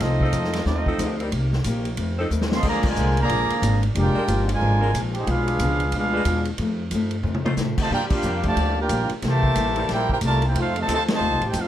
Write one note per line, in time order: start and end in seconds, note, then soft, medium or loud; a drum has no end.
0.00 0.32 C2 medium
0.00 0.23 F3 medium
0.00 0.64 A3 medium
0.00 0.64 C4 medium
0.00 0.65 C4 medium
0.00 0.23 C4 medium
0.00 0.64 D#4 medium
0.00 0.23 D#4 medium
0.00 0.64 F4 medium
0.00 0.64 A4 medium
0.00 0.24 A4 medium
0.00 0.64 D#5 loud
0.00 kick soft
0.00 snare soft
0.00 ride medium
0.20 0.31 F3 loud
0.20 0.31 C4 medium
0.20 0.31 D#4 medium
0.20 0.30 A4 loud
0.20 kick medium
0.32 0.65 F2 loud
0.32 0.55 F3 medium
0.32 0.55 C4 medium
0.32 0.56 D#4 medium
0.32 0.56 A4 medium
0.32 kick soft
0.32 hi-hat pedal medium
0.32 ride medium
0.44 snare soft
0.53 snare soft
0.53 ride medium
0.65 0.98 D#2 medium
0.65 0.88 F3 medium
0.65 1.15 A3 medium
0.65 1.15 C4 medium
0.65 1.16 C4 medium
0.65 0.88 C4 medium
0.65 1.15 D#4 medium
0.65 0.89 D#4 medium
0.65 1.15 F4 medium
0.65 1.16 A4 medium
0.65 0.89 A4 medium
0.65 1.16 D#5 medium
0.65 kick soft
0.65 snare soft
0.86 1.18 F3 loud
0.86 1.19 C4 loud
0.86 1.18 D#4 loud
0.86 1.18 A4 loud
0.86 kick medium
0.98 1.31 D2 loud
0.98 1.21 F3 medium
0.98 1.21 C4 medium
0.98 1.21 D#4 medium
0.98 1.22 A4 medium
0.98 kick soft
0.98 hi-hat pedal medium
0.98 ride medium
1.20 1.29 G3 loud
1.20 1.29 C4 medium
1.20 1.29 D#4 medium
1.20 1.29 A#4 loud
1.20 ride soft
1.32 1.64 C2 medium
1.32 1.54 C3 medium
1.32 1.55 A#3 medium
1.32 1.56 D#4 medium
1.32 1.56 G4 medium
1.32 kick soft
1.32 ride medium
1.53 snare soft
1.64 1.97 A#1 loud
1.64 1.88 C3 medium
1.64 1.88 A#3 medium
1.64 1.88 D#4 medium
1.64 1.88 G4 medium
1.64 kick soft
1.64 hi-hat pedal medium
1.64 ride medium
1.85 ride medium
1.97 2.30 F2 medium
1.97 2.20 F2 medium
1.97 2.20 D#3 medium
1.97 2.21 A3 medium
1.97 2.21 C4 medium
1.97 kick soft
1.97 ride medium
2.19 2.27 F3 loud
2.19 2.27 C4 loud
2.19 2.28 D#4 loud
2.19 2.27 A4 loud
2.30 2.62 D#2 medium
2.30 2.53 F2 medium
2.30 2.53 D#3 medium
2.30 2.53 A3 medium
2.30 2.54 C4 medium
2.30 hi-hat pedal medium
2.41 snare medium
2.52 2.64 D#3 medium
2.52 2.64 A3 medium
2.52 2.64 C4 medium
2.52 2.65 A4 medium
2.52 2.65 D#5 medium
2.52 2.65 F5 medium
2.52 2.65 C6 loud
2.52 snare loud
2.63 2.96 D2 medium
2.63 2.86 A#2 soft
2.63 2.84 D3 loud
2.63 2.87 F3 medium
2.63 2.84 F3 loud
2.63 3.55 G#3 medium
2.63 2.87 G#3 medium
2.63 2.84 A#3 loud
2.63 3.55 D4 medium
2.63 2.87 D4 medium
2.63 3.55 F4 medium
2.63 3.55 A#4 loud
2.63 kick medium
2.63 crash medium
2.68 2.85 G#4 medium
2.68 2.85 D5 loud
2.68 2.85 F5 loud
2.68 2.85 A#5 loud
2.83 3.18 D3 medium
2.83 3.18 F3 medium
2.83 3.18 G#3 medium
2.83 kick loud
2.83 crash medium
2.88 3.19 F4 medium
2.88 3.19 A#4 medium
2.88 3.20 D5 medium
2.88 3.19 G#5 loud
2.96 3.29 C2 loud
2.96 3.19 A#2 medium
2.96 3.19 F3 medium
2.96 3.19 G#3 medium
2.96 3.19 D4 medium
2.96 hi-hat pedal medium
3.17 3.80 D3 medium
3.17 3.81 F3 medium
3.17 3.80 A#3 medium
3.17 ride medium
3.21 3.81 G#4 loud
3.21 3.81 D5 loud
3.21 3.81 F5 loud
3.21 3.81 A#5 loud
3.29 3.49 A#1 medium
3.29 3.51 A#2 medium
3.29 3.52 F3 medium
3.29 3.52 G#3 medium
3.29 3.53 D4 medium
3.29 kick soft
3.29 ride medium
3.50 muted upright bass stroke soft
3.50 ride medium
3.62 3.95 G#1 loud
3.62 3.84 A#2 medium
3.62 3.84 F3 medium
3.62 3.85 G#3 medium
3.62 3.85 D4 medium
3.62 kick soft
3.62 hi-hat pedal medium
3.62 ride medium
3.83 ride medium
3.95 4.14 F1 loud
3.95 4.17 A#2 medium
3.95 4.17 F3 medium
3.95 4.46 G#3 medium
3.95 4.18 G#3 medium
3.95 4.46 D4 medium
3.95 4.18 D4 medium
3.95 4.47 F4 medium
3.95 4.45 G4 loud
3.95 4.47 D5 medium
3.95 kick soft
3.95 ride medium
3.99 4.47 A#4 medium
3.99 4.47 G5 loud
4.15 4.24 G#3 loud
4.15 4.24 D4 medium
4.15 4.25 F4 medium
4.15 4.24 A#4 loud
4.27 4.60 G1 loud
4.27 4.50 A#2 medium
4.27 4.50 F3 medium
4.27 4.50 G#3 medium
4.27 4.50 D4 medium
4.27 kick soft
4.27 hi-hat pedal medium
4.27 ride medium
4.48 4.94 D3 medium
4.48 4.94 F3 medium
4.48 4.94 G#3 medium
4.48 ride medium
4.52 4.96 F4 medium
4.52 4.96 A#4 medium
4.52 4.96 D5 medium
4.52 4.97 G#5 loud
4.61 4.93 G#1 medium
4.61 4.83 A#2 medium
4.61 4.83 F3 medium
4.61 4.84 G#3 soft
4.61 4.84 D4 medium
4.61 kick soft
4.80 4.90 G#3 loud
4.80 4.90 D4 medium
4.80 4.90 F4 medium
4.80 4.90 A#4 loud
4.94 5.26 A#1 loud
4.94 5.16 A#2 medium
4.94 5.16 F3 medium
4.94 5.16 G#3 medium
4.94 5.17 D4 medium
4.94 kick soft
4.94 hi-hat pedal medium
4.94 ride medium
5.14 5.28 D#4 medium
5.14 5.26 G4 medium
5.14 5.28 C5 medium
5.14 5.28 G5 medium
5.14 ride medium
5.18 5.28 G#4 medium
5.27 5.58 B1 medium
5.27 5.49 B2 medium
5.27 5.49 F3 medium
5.27 5.92 G#3 medium
5.27 5.50 G#3 medium
5.27 5.92 D4 medium
5.27 5.94 D4 medium
5.27 5.50 D4 medium
5.27 5.92 F4 medium
5.27 5.94 G#4 medium
5.27 5.94 B4 medium
5.27 5.94 F5 loud
5.27 kick soft
5.27 ride medium
5.48 ride medium
5.59 5.92 C#2 loud
5.59 5.83 B2 medium
5.59 5.83 F3 medium
5.59 5.83 G#3 medium
5.59 5.83 D4 medium
5.59 kick soft
5.59 hi-hat pedal medium
5.59 ride medium
5.80 ride medium
5.92 6.25 D2 medium
5.92 6.16 B2 medium
5.92 6.16 F3 medium
5.92 6.43 G#3 medium
5.92 6.43 D4 medium
5.92 6.44 D4 medium
5.92 6.43 F4 medium
5.92 6.44 B4 medium
5.92 kick soft
5.92 ride medium
5.96 6.17 G#3 medium
5.96 6.17 D4 medium
5.96 6.45 G#4 medium
5.96 6.44 F5 medium
6.13 6.22 G#3 loud
6.13 6.22 D4 loud
6.13 6.22 F4 medium
6.13 6.22 B4 loud
6.25 6.58 E2 medium
6.25 6.48 B2 medium
6.25 6.49 F3 medium
6.25 6.49 G#3 medium
6.25 6.49 D4 medium
6.25 kick soft
6.25 hi-hat pedal medium
6.25 ride medium
6.45 ride medium
6.58 6.90 F2 loud
6.58 6.81 F2 medium
6.58 6.81 D#3 medium
6.58 6.82 A3 medium
6.58 kick soft
6.58 ride medium
6.62 6.83 C4 medium
6.91 7.15 F2 medium
6.91 7.23 G2 loud
6.91 7.15 D#3 medium
6.91 7.15 A3 medium
6.91 7.15 C4 medium
6.91 kick soft
6.91 hi-hat pedal medium
6.91 ride medium
7.11 ride medium
7.23 7.56 F2 medium
7.23 7.47 F2 medium
7.23 7.48 D#3 medium
7.23 7.48 A3 medium
7.23 mid tom medium
7.28 7.48 C4 medium
7.34 mid tom medium
7.44 7.53 A3 loud
7.44 7.54 D#4 medium
7.44 7.53 F4 medium
7.44 7.53 C5 loud
7.44 mid tom loud
7.57 7.80 F2 medium
7.57 7.76 A2 medium
7.57 7.81 D#3 medium
7.57 7.81 A3 medium
7.57 7.81 C4 medium
7.57 snare medium
7.57 hi-hat pedal medium
7.77 7.90 C3 medium
7.77 7.90 D#3 medium
7.77 7.90 A3 medium
7.77 7.91 F4 medium
7.77 7.91 C5 medium
7.77 7.91 D#5 medium
7.77 7.91 A5 loud
7.77 muted upright bass stroke soft
7.77 kick medium
7.77 crash medium
7.90 8.10 G2 medium
7.90 8.13 G2 soft
7.90 8.13 F3 medium
7.90 8.82 G3 loud
7.90 8.00 A#3 medium
7.90 8.13 A#3 medium
7.90 8.82 D4 medium
7.90 8.00 D4 medium
7.90 8.14 D4 medium
7.90 8.82 F4 medium
7.90 8.02 F4 medium
7.90 8.00 G4 medium
7.90 8.83 G4 loud
7.90 8.01 A#4 medium
7.90 8.01 D5 medium
7.90 8.02 G5 loud
7.90 kick soft
8.10 8.42 A#3 medium
8.10 8.42 D4 medium
8.10 8.44 D4 medium
8.10 8.42 F4 medium
8.10 8.43 G4 medium
8.10 8.43 A#4 medium
8.10 8.43 F5 loud
8.10 muted upright bass stroke soft
8.10 kick loud
8.10 crash medium
8.22 8.56 F2 loud
8.22 8.46 G2 medium
8.22 8.46 F3 medium
8.22 8.46 A#3 medium
8.22 8.47 D4 medium
8.22 hi-hat pedal medium
8.43 8.74 D3 medium
8.43 8.75 F3 loud
8.43 8.74 A3 medium
8.43 8.76 F5 loud
8.43 8.76 A5 loud
8.43 kick medium
8.43 ride medium
8.47 8.77 G4 loud
8.47 8.77 D5 medium
8.56 8.89 D2 medium
8.56 8.79 G2 medium
8.56 8.80 F3 medium
8.56 8.80 A#3 medium
8.56 8.80 D4 medium
8.56 kick soft
8.56 ride medium
8.76 9.10 A#3 medium
8.76 9.10 D4 medium
8.76 9.10 G4 medium
8.81 9.12 F4 medium
8.81 9.12 A#4 medium
8.81 9.13 D5 loud
8.81 9.13 G5 loud
8.89 9.09 A#1 medium
8.89 9.12 G2 medium
8.89 9.12 F3 medium
8.89 9.13 A#3 medium
8.89 9.13 D4 medium
8.89 kick soft
8.89 hi-hat pedal medium
8.89 ride medium
9.09 muted upright bass stroke soft
9.09 ride medium
9.22 9.55 C2 loud
9.22 9.46 C3 soft
9.22 9.85 E3 loud
9.22 9.46 G3 medium
9.22 9.85 A3 loud
9.22 9.85 A#3 loud
9.22 9.46 A#3 medium
9.22 9.46 E4 medium
9.22 9.87 C5 loud
9.22 9.87 E5 loud
9.22 kick soft
9.22 snare soft
9.22 ride medium
9.27 9.87 G4 loud
9.27 9.87 A5 loud
9.43 kick medium
9.55 9.88 A1 medium
9.55 9.78 C3 medium
9.55 9.78 G3 medium
9.55 9.79 A#3 medium
9.55 9.79 E4 medium
9.55 kick soft
9.55 hi-hat pedal medium
9.55 ride medium
9.76 10.20 G3 loud
9.76 10.19 C4 medium
9.76 10.20 E4 medium
9.76 10.20 A#4 loud
9.76 ride medium
9.89 10.21 A#1 medium
9.89 10.12 C3 medium
9.89 10.12 G3 medium
9.89 10.08 A#3 medium
9.89 10.12 A#3 medium
9.89 10.08 E4 medium
9.89 10.10 E4 medium
9.89 10.13 E4 medium
9.89 10.09 G4 medium
9.89 10.11 A#4 loud
9.89 10.10 C5 medium
9.89 10.10 G5 loud
9.89 kick soft
9.89 snare soft
9.89 ride medium
10.09 10.15 A#3 medium
10.09 10.15 E4 medium
10.09 10.17 E4 medium
10.09 10.16 G4 medium
10.09 10.17 A#4 medium
10.09 10.17 C5 medium
10.09 10.17 G5 medium
10.09 kick medium
10.21 10.54 C2 loud
10.21 10.45 C3 medium
10.21 10.45 G3 medium
10.21 10.42 A3 medium
10.21 10.45 A#3 medium
10.21 10.45 E4 medium
10.21 10.43 F4 medium
10.21 10.43 A#4 loud
10.21 10.43 D5 medium
10.21 10.43 A5 loud
10.21 kick soft
10.21 hi-hat pedal medium
10.21 ride medium
10.42 10.56 A#3 medium
10.42 10.56 E4 medium
10.42 10.56 G4 medium
10.42 ride medium
10.46 10.57 E4 medium
10.46 10.58 A#4 medium
10.46 10.57 C5 medium
10.46 10.57 G5 medium
10.55 10.87 F2 loud
10.55 10.77 F3 soft
10.55 10.75 A3 medium
10.55 10.78 C4 medium
10.55 10.75 C4 medium
10.55 10.78 D#4 medium
10.55 10.76 D#4 medium
10.55 10.75 F4 medium
10.55 10.76 A4 medium
10.55 10.78 A4 medium
10.55 10.76 C5 medium
10.55 10.76 F5 loud
10.55 kick soft
10.55 ride medium
10.76 10.88 C3 medium
10.76 10.88 D#3 medium
10.76 10.88 A3 medium
10.76 10.90 C5 medium
10.76 10.89 D#5 medium
10.76 10.90 A5 loud
10.76 ride medium
10.80 10.90 F4 medium
10.87 11.20 D2 loud
10.87 10.99 C3 medium
10.87 10.99 D#3 medium
10.87 11.02 F3 medium
10.87 11.10 F3 medium
10.87 10.99 A3 medium
10.87 11.02 C4 medium
10.87 11.10 C4 medium
10.87 11.02 D#4 medium
10.87 11.11 D#4 medium
10.87 11.02 A4 loud
10.87 11.11 A4 medium
10.87 kick soft
10.87 hi-hat pedal medium
10.87 ride medium
10.92 11.00 F4 medium
10.92 11.00 C5 medium
10.92 11.01 D#5 medium
10.92 11.00 A5 loud
11.08 11.40 C3 medium
11.08 11.41 D#3 medium
11.08 11.40 A3 medium
11.08 snare medium
11.08 ride medium
11.13 11.42 F4 medium
11.13 11.42 C5 loud
11.13 11.42 D#5 loud
11.13 11.42 A5 loud
11.20 11.30 D#2 medium
11.20 11.43 F3 soft
11.20 11.44 C4 medium
11.20 11.44 D#4 medium
11.20 11.44 A4 medium
11.30 11.41 C2 medium
11.41 11.52 A1 medium
11.41 11.56 G4 medium
11.41 ride medium
11.47 11.57 D#4 medium
11.47 11.57 A4 medium
11.47 11.57 C5 medium
11.47 11.57 G5 loud
11.53 11.68 F2 loud
11.53 11.68 F3 medium
11.53 11.68 A3 medium
11.53 11.68 C4 medium
11.53 11.68 D#4 medium
11.53 11.68 F4 medium
11.53 11.68 A4 medium
11.53 kick soft
11.53 hi-hat pedal medium
11.53 ride medium
11.58 11.68 D#4 medium
11.58 11.68 A4 medium
11.58 11.68 C5 medium
11.58 11.68 F5 loud